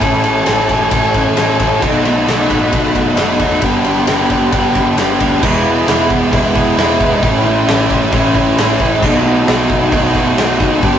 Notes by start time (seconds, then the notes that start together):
0.00 A1 A2 E3 A3 C#4 A4 G#5 C#6, kick, ride
0.04 E4
0.23 A3 C#4 E4 A4, ride
0.46 A1 E3 A3 C#4 E4 A4, snare, ride
0.68 A3 C#4 A4, kick, ride
0.91 A1 A2 E3 A3 C#4 E4 A4, kick, ride
1.14 A1 A3 C#4 E4, kick, ride
1.35 A1 E3 A3 C#4 A4, snare, ride
1.40 E4
1.58 A1 A3 C#4 E4 A4, kick, ride
1.80 B1 B2 F#3 A3 D#4 F#4 F#5 B5, kick, crash
2.03 B1 A3 D#4 F#4, ride
2.08 F#3
2.25 B1 B2 F#3 A3 D#4 F#4, snare, ride
2.50 A1 A3 D#4 F#4, kick, ride
2.72 B1 B2 F#3 A3 D#4 F#4, kick, ride
2.95 B1 F#3 A3 D#4, kick, ride
3.17 F#1 B2 F#3 A3 D#4 F#4, snare, ride
3.39 E2 F#3 A3 D#4 F#4, kick, ride
3.60 G1 G2 D3 G3 B3 D4 G4 F#5, kick, ride
3.84 G3 B3 D4 G4, ride
4.06 G1 D3 G3 B3 D4 G4, snare, ride
4.30 G3 B3 D4 G4, kick, ride
4.52 G1 G2 D3 G3 B3 D4 G4, kick, ride
4.74 G1 G3 B3 D4, kick, ride
4.96 G1 D3 G3 B3 D4 G4, snare, ride
5.19 D2 G3 B3 D4 G4, kick, ride
5.42 E1 E2 B2 E3 G#3 B3 E4, kick, crash
5.65 G#3 B3 E4
5.87 E1 E3 G#3 B3 E4, snare, open hi-hat
6.10 E1, kick
6.31 E1 E2 B2 E3 G#3 B3 E4, kick, open hi-hat
6.55 E3 G#3 B3 E4, kick
6.77 E1 E3 G#3 B3 E4, snare, open hi-hat
7.00 E1 G#3 B3 E4, kick
7.22 A1 A2 E3 A3 C#4 E4, kick, open hi-hat
7.45 A3 C#4 E4
7.67 A1 E3 A3 C#4 E4, snare, open hi-hat
7.90 A1, kick
8.12 A1 A2 E3 A3 C#4 E4, kick, open hi-hat
8.35 A3 C#4 E4, kick
8.57 A1 E3 A3 C#4 E4, snare, open hi-hat
8.79 A1 A3 C#4 E4, kick
9.02 B1 B2 F#3 A3 D#4 F#4, kick, crash
9.24 F#3 A3 D#4
9.46 B1 F#3 A3 D#4 F#4, snare, open hi-hat
9.70 B1, kick
9.92 B1 B2 F#3 A3 D#4 F#4, kick, open hi-hat
10.13 A3 D#4 F#4, kick
10.36 B1 B2 F#3 A3 D#4 F#4, snare, open hi-hat
10.59 F#1 F#3 A3 D#4, kick
10.81 G1 G2 D3 G3 B3 D4 G4, kick, open hi-hat